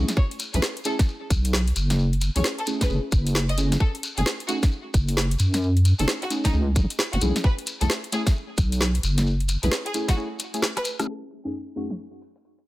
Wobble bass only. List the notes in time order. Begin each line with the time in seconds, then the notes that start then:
0.54 B1
1.30 B1
1.76 F#1
2.36 B1
2.90 F#1
3.12 F#1
4.18 F#1
4.94 F#1
5.39 F#2
5.99 F#1
6.53 C#2
6.76 B1
7.13 F#1
7.22 B1
7.81 B1
8.58 B1
9.03 F#1
9.63 B1